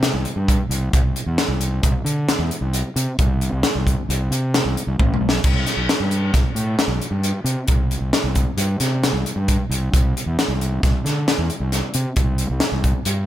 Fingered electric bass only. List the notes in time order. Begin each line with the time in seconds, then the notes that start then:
Already playing: C3
0.14 C2
0.36 G2
0.69 C2
0.93 C2
1.26 E2
1.48 C2
1.84 C2
2.05 D3
2.39 E2
2.61 C2
2.96 C3
3.19 C2
3.52 C2
3.75 C2
4.09 C2
4.31 C3
4.65 C2
4.87 C2
5.00 A1
5.20 B1
5.44 C2
5.77 B1
6.00 G2
6.34 C2
6.55 A2
6.88 B1
7.11 G2
7.44 C3
7.68 C2
8.00 C2
8.24 C2
8.57 G2
8.80 C3
9.13 C2
9.36 G2
9.69 C2
9.93 C2
10.26 E2
10.48 C2
10.83 C2
11.04 D3
11.38 E2
11.60 C2
11.95 C3
12.17 C2
12.50 C2
12.72 C2
13.06 G2